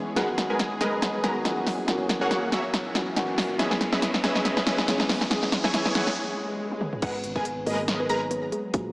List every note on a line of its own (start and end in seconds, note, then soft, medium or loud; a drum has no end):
0.00 0.15 E3 medium
0.00 0.19 E3 medium
0.00 0.16 G#3 medium
0.00 0.17 B3 medium
0.00 0.15 C#4 medium
0.00 0.19 C#4 medium
0.00 0.19 G#4 loud
0.00 1.63 G#4 medium
0.14 1.20 D#3 medium
0.14 1.21 F#3 medium
0.14 3.56 F#3 medium
0.14 1.21 G#3 medium
0.14 0.28 G#3 medium
0.14 1.65 B3 medium
0.14 1.22 B3 medium
0.14 0.28 G#4 medium
0.14 0.28 A#4 medium
0.14 0.28 B4 medium
0.14 0.28 F#5 medium
0.14 snare medium
0.14 closed hi-hat medium
0.14 riser medium
0.18 1.22 F#4 loud
0.38 snare medium
0.38 closed hi-hat medium
0.50 0.59 G#3 medium
0.50 0.59 G#4 medium
0.50 0.59 A#4 medium
0.50 0.59 B4 medium
0.50 0.59 G#5 medium
0.59 snare medium
0.59 closed hi-hat medium
0.81 1.21 G#3 medium
0.81 1.21 G#4 medium
0.81 1.21 A#4 medium
0.81 1.21 B4 medium
0.81 1.21 D#5 loud
0.81 snare medium
0.81 closed hi-hat medium
1.02 snare medium
1.02 closed hi-hat medium
1.22 1.42 D#3 medium
1.22 1.43 F#3 medium
1.22 1.43 G#3 medium
1.22 1.35 G#3 medium
1.22 1.43 B3 medium
1.22 1.43 F#4 medium
1.22 1.35 G#4 medium
1.22 1.35 A#4 medium
1.22 1.35 B4 medium
1.22 1.35 A#5 loud
1.22 snare medium
1.22 closed hi-hat medium
1.44 1.85 E3 medium
1.44 1.85 F#3 medium
1.44 1.86 A#3 medium
1.44 1.86 C#4 medium
1.44 1.86 F#4 loud
1.44 snare medium
1.44 closed hi-hat medium
1.67 3.58 A#2 medium
1.67 3.58 E4 medium
1.67 3.58 A#4 medium
1.67 snare medium
1.67 open hi-hat medium
1.86 2.92 E3 medium
1.86 2.92 F#3 medium
1.86 2.93 A#3 medium
1.86 2.93 C#4 medium
1.86 2.94 F#4 loud
1.86 snare medium
1.86 closed hi-hat medium
2.09 snare medium
2.09 closed hi-hat medium
2.21 2.50 A#3 medium
2.21 2.50 F#4 medium
2.21 2.50 G#4 medium
2.21 2.50 C#5 medium
2.21 2.50 F#5 loud
2.31 snare medium
2.31 closed hi-hat medium
2.52 2.64 A#3 medium
2.52 2.64 F#4 medium
2.52 2.64 G#4 medium
2.52 2.64 C#5 medium
2.52 2.64 E5 loud
2.52 snare medium
2.52 closed hi-hat medium
2.74 snare medium
2.74 closed hi-hat medium
2.94 3.14 E3 medium
2.94 3.14 F#3 medium
2.94 3.14 A#3 medium
2.94 3.15 C#4 medium
2.94 3.15 F#4 medium
2.94 snare medium
2.94 closed hi-hat medium
3.15 3.56 E3 medium
3.15 3.57 F#3 medium
3.15 3.57 A#3 medium
3.15 3.57 C#4 medium
3.15 3.58 F#4 loud
3.15 snare medium
3.15 closed hi-hat medium
3.38 snare medium
3.38 open hi-hat medium
3.57 4.63 E3 loud
3.57 6.14 E3 medium
3.57 4.64 G#3 medium
3.57 4.64 B3 medium
3.57 3.71 C#4 medium
3.57 6.14 C#4 medium
3.57 4.65 C#4 medium
3.57 3.71 G#4 medium
3.57 3.71 B4 medium
3.57 5.29 B4 medium
3.57 3.71 D#5 medium
3.57 3.71 E5 medium
3.57 snare medium
3.57 closed hi-hat medium
3.62 4.65 G#4 loud
3.71 snare medium
3.81 snare medium
3.81 closed hi-hat medium
3.93 4.02 C#4 medium
3.93 4.02 G#4 medium
3.93 4.02 B4 medium
3.93 4.02 D#5 medium
3.93 4.02 E5 medium
3.93 snare medium
4.02 snare loud
4.02 closed hi-hat medium
4.14 snare medium
4.24 4.64 C#4 loud
4.24 4.64 G#4 medium
4.24 4.64 B4 medium
4.24 4.64 D#5 medium
4.24 4.64 E5 loud
4.24 snare medium
4.24 closed hi-hat medium
4.35 snare medium
4.45 snare medium
4.45 closed hi-hat medium
4.57 snare medium
4.66 4.85 E3 medium
4.66 4.86 G#3 medium
4.66 4.86 B3 medium
4.66 4.78 C#4 medium
4.66 4.86 C#4 medium
4.66 4.78 G#4 medium
4.66 4.86 G#4 medium
4.66 4.78 B4 medium
4.66 4.78 D#5 medium
4.66 4.78 E5 loud
4.66 snare loud
4.66 closed hi-hat medium
4.78 snare medium
4.87 5.27 E3 medium
4.87 5.28 G#3 medium
4.87 5.29 B3 medium
4.87 5.29 C#4 medium
4.87 5.29 G#4 loud
4.87 snare loud
4.87 closed hi-hat medium
5.00 snare medium
5.09 snare loud
5.09 open hi-hat medium
5.21 snare medium
5.29 6.16 E3 loud
5.29 6.16 G#3 medium
5.29 6.17 B3 medium
5.29 6.17 C#4 medium
5.29 snare loud
5.29 closed hi-hat medium
5.33 6.18 G#4 loud
5.43 snare medium
5.52 snare loud
5.52 closed hi-hat medium
5.64 5.93 E3 medium
5.64 5.93 E4 medium
5.64 5.93 G#4 medium
5.64 5.93 C#5 medium
5.64 5.93 G#5 loud
5.64 snare medium
5.74 snare loud
5.74 closed hi-hat medium
5.86 snare medium
5.95 6.07 E3 medium
5.95 6.07 E4 medium
5.95 6.07 G#4 medium
5.95 6.07 C#5 medium
5.95 6.07 F#5 loud
5.95 snare loud
5.95 closed hi-hat medium
6.07 snare medium
6.17 swell medium
6.71 high tom medium
6.81 mid tom medium
6.93 mid tom medium
7.02 7.65 G#1 loud
7.02 8.51 F#3 medium
7.02 7.14 G#3 medium
7.02 8.51 B3 medium
7.02 7.29 B3 medium
7.02 8.51 G#4 medium
7.02 7.14 G#4 medium
7.02 7.14 A#4 medium
7.02 7.14 B4 medium
7.02 7.29 B4 loud
7.02 7.14 F#5 medium
7.02 7.14 F#5 loud
7.02 kick loud
7.02 closed hi-hat medium
7.02 crash loud
7.02 impact medium
7.24 closed hi-hat medium
7.36 7.45 G#3 medium
7.36 7.61 B3 medium
7.36 7.45 G#4 medium
7.36 7.45 A#4 medium
7.36 7.45 B4 medium
7.36 7.61 B4 medium
7.36 7.45 G#5 medium
7.36 kick medium
7.45 closed hi-hat medium
7.66 8.51 G#1 loud
7.66 8.07 G#3 loud
7.66 7.93 A#3 medium
7.66 8.07 G#4 medium
7.66 7.93 A#4 medium
7.66 8.07 A#4 medium
7.66 8.07 B4 medium
7.66 8.07 D#5 loud
7.66 open hi-hat medium
7.88 snare loud
7.88 closed hi-hat medium
8.00 8.25 B3 medium
8.00 8.26 B4 medium
8.09 8.21 G#3 medium
8.09 8.21 G#4 medium
8.09 8.21 A#4 medium
8.09 8.21 B4 medium
8.09 8.21 A#5 loud
8.09 closed hi-hat medium
8.31 8.49 B3 medium
8.31 8.49 B4 medium
8.31 closed hi-hat medium
8.52 8.92 E3 medium
8.52 8.70 G#3 medium
8.52 8.92 A#3 medium
8.52 8.92 F#4 medium
8.52 8.70 G#4 medium
8.52 closed hi-hat medium
8.74 8.92 A#1 loud
8.74 8.92 F#3 medium
8.74 8.92 F#4 medium
8.74 kick loud
8.74 closed hi-hat medium